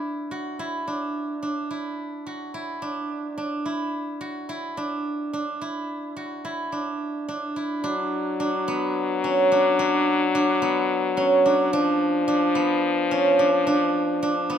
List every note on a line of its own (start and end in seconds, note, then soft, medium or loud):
0.00 0.87 D4 medium
0.00 0.59 E4 soft
0.00 0.31 F#4 medium
0.31 2.26 F#4 medium
0.59 1.70 E4 medium
0.87 1.42 D4 medium
1.43 2.82 D4 medium
1.71 2.54 E4 medium
2.27 4.20 F#4 medium
2.54 3.65 E4 medium
2.82 3.37 D4 medium
3.38 4.77 D4 medium
3.66 4.49 E4 medium
4.21 6.16 F#4 medium
4.49 5.61 E4 medium
4.77 5.33 D4 medium
5.33 6.72 D4 medium
5.61 6.44 E4 medium
6.17 8.60 F#4 medium
6.45 7.56 E4 medium
6.72 7.28 D4 medium
7.29 7.83 D4 medium
7.56 10.17 E4 medium
7.83 11.74 F#3 medium
7.83 8.39 D4 medium
8.40 9.30 D4 medium
8.68 10.61 B3 medium
9.24 9.58 C#4 medium
9.52 9.79 D4 medium
9.79 10.34 D4 medium
10.35 11.23 D4 medium
10.62 12.55 B3 medium
11.17 11.52 C#4 medium
11.46 11.73 D4 medium
11.73 14.58 F3 medium
11.73 12.27 D4 medium
12.28 13.17 D4 medium
12.55 14.49 B3 medium
13.11 13.45 C#4 medium
13.39 13.66 D4 medium
13.67 14.22 D4 medium
14.23 14.58 D4 medium
14.50 14.58 B3 medium